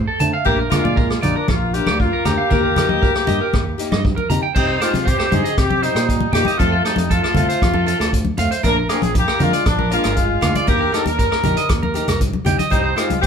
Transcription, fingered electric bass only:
0.21 D3
0.46 A#1
0.85 A#2
1.24 A#1
1.49 A#1
1.88 D2
2.26 D2
2.52 D#2
2.90 D#2
3.29 G2
3.54 D#2
3.91 G2
4.31 C3
4.56 C3
4.93 C3
5.32 G2
5.58 C3
5.95 A#2
6.33 A#2
6.60 F2
6.97 F2
7.36 C2
7.62 F2
8.00 D2
8.39 D2
8.65 A#1
9.03 A#1
9.41 F2
9.66 A#1
10.05 G1
10.42 D2
10.68 D#2
11.06 D#2
11.44 A#1
11.70 D#2
12.08 C2
12.46 C2
12.72 C2
13.11 C2

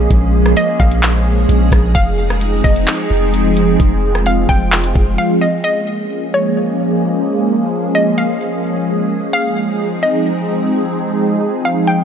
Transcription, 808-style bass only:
0.11 A#1
0.80 A#1
1.49 A#1
1.72 A#1
1.95 F1
2.64 F1
3.11 F1
3.80 F1
4.49 F1
4.96 F1

